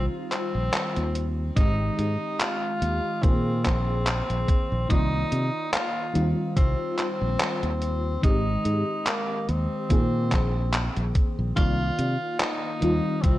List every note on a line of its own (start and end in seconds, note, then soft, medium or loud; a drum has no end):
0.00 1.49 D#3 medium
0.00 1.49 G3 medium
0.00 1.50 C4 medium
0.00 1.50 F4 loud
0.31 1.27 C4 loud
0.31 clap medium
0.31 closed hi-hat medium
0.55 0.69 A#1 medium
0.74 clap loud
0.74 closed hi-hat medium
0.96 1.49 D#2 medium
0.96 closed hi-hat soft
1.15 closed hi-hat medium
1.55 1.89 G#1 loud
1.55 3.15 D#3 medium
1.55 3.16 G#3 medium
1.55 3.16 C4 medium
1.55 2.41 D#4 loud
1.55 3.17 G4 medium
1.55 kick loud
1.55 closed hi-hat medium
1.99 2.16 G#2 medium
1.99 closed hi-hat medium
2.40 3.24 F4 loud
2.40 clap loud
2.40 closed hi-hat medium
2.82 2.99 D#2 medium
2.82 closed hi-hat medium
3.22 3.67 A#2 medium
3.22 4.82 D#3 medium
3.22 4.82 A#3 medium
3.22 3.64 C4 loud
3.22 4.83 C4 medium
3.22 4.83 G#4 medium
3.22 kick loud
3.22 closed hi-hat medium
3.65 4.20 A#1 loud
3.65 4.86 C4 loud
3.65 kick medium
3.65 clap medium
3.65 closed hi-hat medium
4.07 clap loud
4.07 closed hi-hat medium
4.30 4.44 A#1 loud
4.30 closed hi-hat soft
4.48 kick loud
4.48 closed hi-hat medium
4.72 4.86 A#1 medium
4.88 5.22 C2 loud
4.88 6.07 D#3 medium
4.88 6.07 A#3 medium
4.88 5.69 D#4 loud
4.88 6.08 F4 medium
4.88 6.08 D5 medium
4.88 kick loud
4.88 closed hi-hat medium
5.32 5.49 C3 medium
5.32 closed hi-hat medium
5.73 6.27 F4 loud
5.73 clap loud
5.73 closed hi-hat medium
6.13 6.32 D#2 medium
6.13 8.15 D#3 medium
6.13 8.16 G3 medium
6.13 8.16 C4 medium
6.13 8.16 F4 loud
6.13 closed hi-hat medium
6.57 6.74 C2 loud
6.57 6.95 C4 loud
6.57 kick loud
6.57 closed hi-hat medium
6.99 8.20 C4 loud
6.99 clap medium
6.99 closed hi-hat medium
7.22 7.36 A#1 medium
7.40 clap loud
7.40 closed hi-hat medium
7.63 8.16 D#2 medium
7.63 closed hi-hat soft
7.82 closed hi-hat medium
8.21 8.56 G#1 loud
8.21 9.82 D#3 medium
8.21 9.82 G#3 medium
8.21 9.83 C4 medium
8.21 9.09 D#4 loud
8.21 9.83 G4 medium
8.21 kick loud
8.21 closed hi-hat medium
8.65 8.82 G#2 medium
8.65 closed hi-hat medium
9.07 9.50 A#3 medium
9.07 clap loud
9.07 closed hi-hat medium
9.49 9.66 D#2 medium
9.49 11.15 C4 medium
9.49 closed hi-hat medium
9.89 10.33 A#2 medium
9.89 11.49 D#3 medium
9.89 11.49 A#3 medium
9.89 11.50 C4 medium
9.89 11.50 G#4 medium
9.89 kick loud
9.89 closed hi-hat medium
10.32 10.87 A#1 loud
10.32 kick medium
10.32 clap medium
10.32 closed hi-hat medium
10.73 clap loud
10.73 closed hi-hat medium
10.96 11.11 A#1 loud
10.96 closed hi-hat soft
11.15 kick loud
11.15 closed hi-hat medium
11.39 11.52 A#1 medium
11.55 11.89 C2 loud
11.55 12.74 D#3 medium
11.55 12.74 A#3 medium
11.55 12.41 F4 loud
11.55 12.75 F4 medium
11.55 12.75 D5 medium
11.55 kick loud
11.55 closed hi-hat medium
11.99 12.16 C3 medium
11.99 closed hi-hat medium
12.39 13.24 D#4 loud
12.39 clap loud
12.39 closed hi-hat medium
12.81 12.99 D#2 medium
12.81 13.38 D#3 medium
12.81 13.38 G3 medium
12.81 13.38 C4 medium
12.81 13.38 F4 loud
12.81 closed hi-hat medium
13.22 13.38 C2 loud
13.22 13.38 C4 loud
13.22 kick loud
13.22 closed hi-hat medium